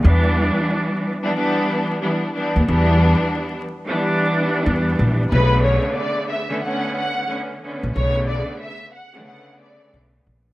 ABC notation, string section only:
X:1
M:4/4
L:1/16
Q:"Swing 16ths" 1/4=91
K:Bm
V:1 name="String section"
[E,G,B,D]6 z [E,G,B,D] [E,G,B,D]4 [E,G,B,D]2 [E,G,B,D]2 | [E,G,B,D]6 z [E,G,B,D]8 z | [C,D,A,B,]6 z [D,A,B,C] [D,A,B,C]4 [D,A,B,C]2 [D,A,B,C]2 | [C,D,A,B,]6 z [C,D,A,B,]8 z |]